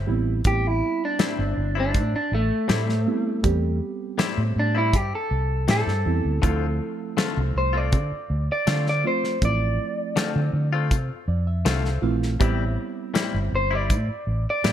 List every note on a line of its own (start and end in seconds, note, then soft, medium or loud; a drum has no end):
0.07 0.43 A1 medium
0.07 0.40 G3 medium
0.07 0.40 B3 medium
0.07 0.40 C4 medium
0.07 0.41 E4 medium
0.44 0.80 A1 medium
0.44 1.74 G3 medium
0.44 1.75 B3 medium
0.44 1.75 C4 medium
0.44 1.75 E4 medium
0.44 0.67 G4 medium
0.44 kick loud
0.44 closed hi-hat medium
0.67 1.02 E4 medium
1.05 1.76 D4 medium
1.19 1.42 A2 medium
1.19 1.43 G3 medium
1.19 1.43 C4 medium
1.19 1.43 E4 medium
1.19 snare loud
1.19 closed hi-hat medium
1.39 1.56 G1 medium
1.57 1.96 G1 medium
1.75 1.99 G3 soft
1.75 1.99 C4 medium
1.75 1.98 E4 medium
1.80 2.14 D4 loud
1.94 2.13 A2 loud
1.94 kick loud
1.94 closed hi-hat medium
2.14 2.33 D4 medium
2.14 muted fingered electric bass stroke soft
2.32 2.50 A1 medium
2.32 3.79 A3 loud
2.68 2.92 A2 medium
2.68 3.05 A2 loud
2.68 2.92 G3 medium
2.68 2.92 C4 medium
2.68 2.93 E4 medium
2.68 snare loud
2.68 closed hi-hat medium
2.89 snare soft
3.06 3.39 G3 medium
3.06 3.39 B3 medium
3.06 3.40 C4 medium
3.06 3.40 E4 medium
3.43 3.79 E2 medium
3.43 4.73 G3 medium
3.43 4.74 B3 medium
3.43 4.74 C4 medium
3.43 4.74 G4 medium
3.43 kick loud
3.43 closed hi-hat medium
4.18 4.41 A2 medium
4.18 4.42 G3 medium
4.18 4.42 C4 medium
4.18 4.42 E4 loud
4.18 snare loud
4.18 closed hi-hat medium
4.38 4.55 A2 medium
4.56 4.94 A2 medium
4.56 4.77 D4 medium
4.75 4.98 G3 soft
4.75 4.98 C4 soft
4.75 4.97 E4 medium
4.75 4.95 E4 loud
4.93 5.12 G2 medium
4.93 5.13 G4 medium
4.93 kick medium
4.93 closed hi-hat medium
5.15 5.68 A4 medium
5.31 5.66 C2 medium
5.68 5.91 A2 medium
5.68 5.86 A2 medium
5.68 5.91 G3 medium
5.68 5.92 C4 medium
5.68 5.92 E4 medium
5.68 7.15 A4 loud
5.68 snare loud
5.68 closed hi-hat medium
5.87 6.04 G2 medium
5.87 snare soft
6.05 6.23 E2 medium
6.05 6.38 G3 medium
6.05 6.38 B3 medium
6.05 6.38 C4 medium
6.05 6.39 E4 medium
6.25 6.41 D2 medium
6.42 6.79 D2 medium
6.42 6.65 D3 medium
6.42 7.72 F3 medium
6.42 7.72 A3 medium
6.42 6.66 A3 medium
6.42 7.72 C4 medium
6.42 6.66 C4 medium
6.42 7.73 E4 medium
6.42 6.66 F4 medium
6.42 kick loud
6.42 closed hi-hat medium
7.17 7.40 D3 medium
7.17 7.41 A3 loud
7.17 7.41 C4 medium
7.17 7.41 F4 medium
7.17 snare loud
7.17 closed hi-hat medium
7.37 7.54 C2 medium
7.55 7.94 C2 medium
7.55 7.77 C5 loud
7.73 7.97 A3 soft
7.73 7.96 C4 medium
7.73 7.96 F4 medium
7.77 8.48 D5 medium
7.92 8.11 D3 medium
7.92 kick loud
7.92 closed hi-hat medium
8.12 muted fingered electric bass stroke soft
8.30 8.48 D2 medium
8.52 8.87 D5 medium
8.67 8.90 D3 medium
8.67 9.03 D3 loud
8.67 8.90 A3 medium
8.67 8.90 C4 medium
8.67 8.91 F4 medium
8.67 snare loud
8.67 closed hi-hat medium
8.87 9.06 D5 medium
8.87 snare soft
9.04 9.37 F3 medium
9.04 9.37 A3 medium
9.04 9.37 C4 medium
9.04 9.37 F4 medium
9.04 9.42 C5 medium
9.24 snare soft
9.42 9.77 A1 medium
9.42 10.71 F3 medium
9.42 10.71 A3 medium
9.42 10.72 C4 medium
9.42 10.72 E4 medium
9.42 10.89 D5 loud
9.42 kick loud
9.42 closed hi-hat medium
10.16 10.39 D3 medium
10.16 10.39 A3 medium
10.16 10.40 C4 medium
10.16 10.40 F4 medium
10.16 snare loud
10.16 closed hi-hat medium
10.36 10.53 D3 medium
10.53 10.91 D3 medium
10.73 10.96 A3 medium
10.73 10.96 C4 medium
10.73 10.95 F4 medium
10.91 11.09 C3 medium
10.91 kick loud
10.91 closed hi-hat medium
11.28 11.63 F2 medium
11.28 11.46 D5 medium
11.47 11.64 E5 medium
11.65 12.01 C2 loud
11.65 11.88 D3 medium
11.65 11.89 A3 medium
11.65 11.89 C4 loud
11.65 11.89 F4 medium
11.65 12.00 E5 medium
11.65 snare loud
11.65 closed hi-hat medium
11.85 snare soft
12.02 12.38 A#1 medium
12.02 12.36 E3 loud
12.02 12.35 F3 medium
12.02 12.35 A3 medium
12.02 12.35 C4 medium
12.02 12.38 F5 medium
12.23 snare soft
12.40 12.76 A1 loud
12.40 12.63 A2 medium
12.40 13.69 G3 medium
12.40 12.63 G3 medium
12.40 13.70 B3 medium
12.40 13.70 C4 medium
12.40 12.64 C4 medium
12.40 13.70 E4 loud
12.40 12.64 E4 medium
12.40 kick loud
12.40 closed hi-hat medium
13.14 13.37 A2 medium
13.14 13.38 G3 loud
13.14 13.38 C4 medium
13.14 13.38 E4 loud
13.14 snare loud
13.14 closed hi-hat medium
13.34 13.52 G1 medium
13.52 13.91 G1 medium
13.52 13.75 C5 loud
13.71 13.95 G3 medium
13.71 13.94 C4 soft
13.71 13.93 E4 medium
13.75 14.46 D5 medium
13.90 14.08 A2 loud
13.90 kick loud
13.90 closed hi-hat medium
14.08 muted fingered electric bass stroke soft
14.27 14.45 A1 medium
14.50 14.72 D5 medium
14.64 14.72 A2 medium
14.64 14.72 A2 loud
14.64 14.72 G3 medium
14.64 14.72 C4 medium
14.64 14.72 E4 medium
14.64 snare loud
14.64 closed hi-hat medium